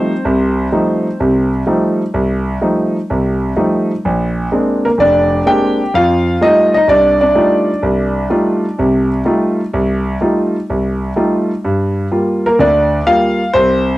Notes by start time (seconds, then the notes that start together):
Already playing: F3 G3 A3 C4 D#4 C5
0.25 C2 C3
0.72 F3 G3 A3 D#4
1.20 C2 C3
1.67 F3 G3 A3 D#4
2.14 C2
2.61 F3 G3 A3 D#4
3.10 C2 C3
3.56 F3 G3 A3 D#4
4.05 A#1
4.52 G#3 A#3 C4 D4
4.85 A#3 A#4
4.98 F1 D4 D5
5.46 G#3 A#3 C4 D4 G4 G5
5.94 F2 F4 F5
6.41 G3 A3 D#4 F4 D#5
6.74 D#4 D#5
6.88 C2 D4 D5
7.21 D4 D5
7.35 G3 A3 D#4 F4
7.83 C2
8.30 G3 A3 D#4 F4
8.78 C2 C3
9.25 G3 A3 D#4 F4
9.73 C2
10.21 G3 A3 D#4 F4
10.70 C2
11.16 G3 A3 D#4 F4
11.65 G2
12.11 G3 A#3 F4
12.46 A#3 A#4
12.59 D2 D3 D4 D5
13.06 G3 A#3 F4 F5
13.53 C2 C4 C5